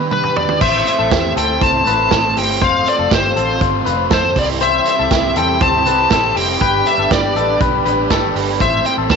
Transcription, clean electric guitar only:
0.11 0.58 B4 medium
0.61 0.97 C5 medium
0.99 1.11 A4 medium
1.12 1.37 G4 medium
1.37 1.61 A4 medium
1.61 1.86 C5 medium
1.87 2.12 B4 medium
2.12 2.36 A4 medium
2.37 2.62 G4 medium
2.62 2.97 C5 loud
2.99 3.11 A4 medium
3.11 3.36 G4 medium
3.36 3.61 A4 medium
3.61 3.85 C5 medium
3.86 4.10 B4 medium
4.11 4.36 A4 medium
4.36 4.61 G4 medium
4.61 4.96 C5 loud
4.99 5.11 A4 medium
5.11 5.36 G4 medium
5.37 5.61 A4 medium
5.61 5.86 C5 medium
5.86 6.11 B4 medium
6.12 6.36 A4 medium
6.36 6.61 G4 medium
6.61 6.96 B4 loud
6.99 7.11 A4 medium
7.11 7.36 G4 medium
7.36 7.60 A4 medium
7.61 7.84 B4 medium
7.85 8.10 B4 medium
8.11 8.36 A4 medium
8.36 8.60 G4 medium
8.61 8.96 C5 medium
8.98 9.10 A4 medium
9.10 9.16 G4 medium

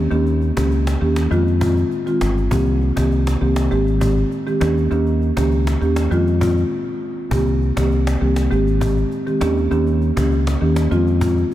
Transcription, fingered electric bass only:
0.11 0.50 D#2 loud
0.57 0.95 C#2 medium
1.01 1.27 D#2 medium
1.31 1.82 F2 loud
2.21 2.47 G1 medium
2.51 2.90 C2 loud
2.97 3.35 C2 medium
3.41 3.67 C2 medium
3.71 4.22 G#1 loud
4.61 4.87 D#2 loud
4.91 5.30 D#2 loud
5.37 5.75 C#2 medium
5.81 6.07 D#2 medium
6.11 6.62 F2 loud
7.31 7.70 C2 medium
7.77 8.15 C2 medium
8.21 8.47 C2 medium
8.51 9.03 G#1 loud
9.41 9.67 D#2 loud
9.71 10.10 D#2 loud
10.17 10.55 C#2 medium
10.61 10.87 D#2 medium
10.91 11.43 F2 loud

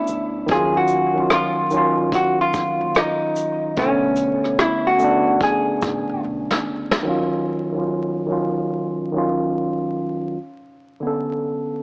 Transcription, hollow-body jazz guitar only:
0.00 0.53 E4 medium
0.51 0.76 G#4 loud
0.77 1.28 F#4 medium
1.33 2.15 F4 loud
2.15 2.41 F#4 loud
2.41 2.98 F4 loud
2.97 3.78 D#4 medium
3.79 4.61 C#4 medium
4.61 4.87 E4 medium
4.87 5.43 F#4 medium
5.43 6.21 G#4 medium

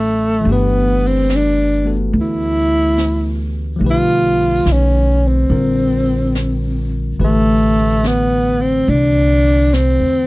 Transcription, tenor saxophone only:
0.00 0.53 A3 medium
0.52 1.09 B3 medium
1.07 1.37 C4 medium
1.36 1.98 D4 medium
2.21 3.53 E4 loud
3.91 4.74 F4 loud
4.73 5.29 C#4 medium
5.28 6.94 C4 medium
7.24 8.08 A3 medium
8.07 8.63 B3 medium
8.61 8.91 C4 medium
8.90 9.75 D4 loud
9.74 10.27 C4 medium

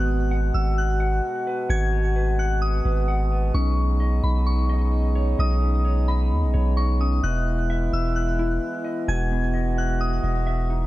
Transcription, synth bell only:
0.00 0.50 F#6 medium
0.54 0.76 E6 medium
0.78 1.66 F#6 medium
1.70 2.35 G#6 loud
2.39 2.61 F#6 medium
2.62 3.50 D#6 medium
3.54 4.20 C#6 medium
4.24 4.45 B5 medium
4.46 5.35 C#6 medium
5.40 6.05 D#6 loud
6.08 6.73 B5 medium
6.77 6.99 C#6 medium
7.01 7.22 D#6 medium
7.24 7.89 F#6 loud
7.93 8.15 E6 medium
8.16 9.04 F#6 medium
9.08 9.74 G#6 medium
9.78 10.00 F#6 medium
10.01 10.87 D#6 medium

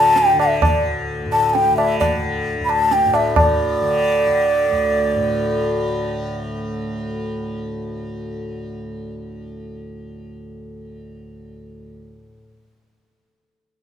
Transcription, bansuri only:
0.00 0.19 A5 loud
0.18 0.40 G5 loud
0.41 0.62 E5 medium
0.65 0.85 D5 medium
1.32 1.49 A5 loud
1.49 1.55 A5 medium
1.54 1.76 G5 loud
1.77 1.99 E5 loud
2.00 2.22 D5 medium
2.65 2.71 B5 medium
2.70 2.94 A5 loud
2.93 3.16 G5 loud
3.15 3.38 E5 medium
3.38 6.39 D5 loud

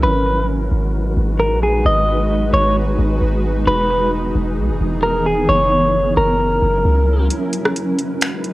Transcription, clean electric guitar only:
0.03 0.46 B4 medium
1.40 1.61 A#4 medium
1.63 1.84 G#4 medium
1.86 2.50 D#5 loud
2.54 2.75 C#5 medium
3.67 4.10 B4 loud
5.03 5.25 A#4 medium
5.26 5.48 G#4 medium
5.49 6.13 C#5 loud
6.17 7.27 A#4 medium

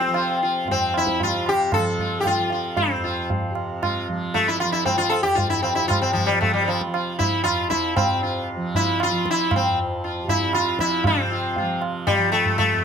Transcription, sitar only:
0.00 0.38 C4 medium
0.15 0.40 F4 soft
0.43 0.67 F4 soft
0.71 0.97 C4 medium
0.97 1.23 E4 medium
1.23 1.49 F4 medium
1.49 1.73 G4 medium
1.74 2.20 A4 medium
2.00 2.24 F4 soft
2.20 2.26 G4 medium
2.27 2.51 F4 medium
2.52 2.76 F4 soft
2.77 3.52 C4 medium
3.04 3.28 F4 soft
3.82 4.07 F4 soft
4.34 4.48 A3 medium
4.48 4.60 E4 medium
4.60 4.72 F4 medium
4.72 4.85 E4 medium
4.85 4.97 C4 medium
4.98 5.12 F4 medium
5.09 5.23 A4 medium
5.23 5.38 G4 medium
5.35 5.49 F4 medium
5.50 5.62 E4 medium
5.63 5.75 C4 medium
5.75 5.87 E4 medium
5.88 6.01 F4 medium
6.02 6.13 C4 medium
6.13 6.28 F3 medium
6.26 6.40 G3 medium
6.41 6.53 A3 medium
6.54 6.63 G3 medium
6.64 6.80 F3 medium
6.64 6.68 G3 soft
6.94 7.18 F4 soft
7.19 7.43 E4 medium
7.44 7.69 F4 medium
7.70 7.96 E4 medium
7.96 8.21 C4 medium
8.23 8.47 F4 soft
8.76 9.02 E4 medium
9.03 9.28 F4 medium
9.31 9.55 E4 medium
9.56 9.78 C4 medium
10.04 10.28 F4 soft
10.29 10.54 E4 medium
10.54 10.80 F4 medium
10.80 11.06 E4 medium
11.06 11.79 C4 medium
11.06 11.30 F4 soft
11.32 11.55 F4 soft
11.58 11.81 F4 soft
12.07 12.31 G3 medium
12.32 12.57 A3 medium
12.58 12.82 A3 medium

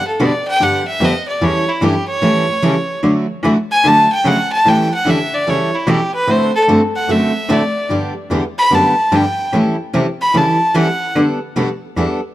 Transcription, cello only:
0.20 0.28 B2 medium
0.61 0.69 G2 medium
1.01 1.09 F2 medium
1.41 1.49 E2 medium
1.81 1.89 G2 loud
2.22 2.30 A2 medium
2.49 2.54 A2 soft
2.62 2.70 C#3 loud
3.03 3.11 D3 medium
3.43 3.51 E3 medium
3.84 3.92 D3 medium
4.25 4.33 C#3 loud
4.65 4.73 A2 loud
5.05 5.13 D3 medium
5.32 5.38 D3 soft
5.46 5.54 C#3 medium
5.87 5.95 B2 loud
6.28 6.36 A2 loud
6.68 6.76 G2 medium
7.08 7.16 F#2 medium
7.49 7.57 A2 loud
7.90 7.98 G2 medium
8.31 8.39 E2 medium
8.72 8.80 F#2 medium
9.12 9.20 G2 loud
9.53 9.61 A2 medium
9.94 10.02 C3 medium
10.34 10.42 C#3 medium
10.75 10.83 E3 medium
11.16 11.24 D3 loud
11.56 11.64 B2 medium
11.97 12.05 E2 medium

